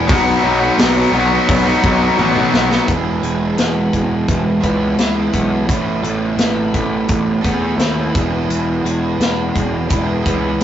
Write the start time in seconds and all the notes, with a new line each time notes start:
0.06 B1 B2 F#3 B3 D#4 F#4, kick, open hi-hat
0.41 B1 F#3 B3 D#4 F#4
0.60 B3 D#4 F#4
0.77 B1 B2 F#3 B3 D#4 F#4, snare, open hi-hat
0.96 B3 D#4 F#4
1.12 B1 B2 F#3 B3 D#4 F#4
1.30 B3 D#4 F#4
1.49 B1, kick, open hi-hat
1.64 B3 D#4 F#4
1.81 B1 F#3 B3 D#4 F#4, kick
2.00 B3 D#4 F#4
2.16 A1 B2 F#3 B3 D#4 F#4, high tom
2.34 B3 D#4 F#4, mid tom
2.53 B1, snare
2.68 B3 D#4 F#4, snare
2.86 E1 E2 E3 G#3 B3 E4 G#4, kick, closed hi-hat
3.22 E1 G#3, closed hi-hat
3.58 E1 B3, snare, closed hi-hat
3.93 E1 G#3, kick, closed hi-hat
4.28 E1 E3, kick, closed hi-hat
4.61 C#2 E3 G#3 B3 E4 G#4, kick, closed hi-hat
4.96 C#2 E3 G#3 B3 E4 G#4, snare, closed hi-hat
5.33 B1 B3, kick, closed hi-hat
5.66 A1 A2 A3 B3 E4 A4, kick, closed hi-hat
6.03 A1 A3, closed hi-hat
6.37 A1 B3, snare, closed hi-hat
6.74 A1 A3, kick, closed hi-hat
7.09 A1, kick, closed hi-hat
7.41 E2 A3 B3 E4 A4, kick, closed hi-hat
7.76 D#2 A3 B3 E4 A4, closed hi-hat
7.80 snare
8.12 E1 E2 E3 B3 E4 G#4, kick, closed hi-hat
8.49 E1 E2, closed hi-hat
8.83 E1 G#3, closed hi-hat
9.18 E1 B3, snare, closed hi-hat
9.55 E1 G#3, kick, closed hi-hat
9.88 E1 E3 B3 E4 G#4, kick, closed hi-hat
10.23 C#2 E3 B3 E4 G#4, kick, closed hi-hat
10.60 C#2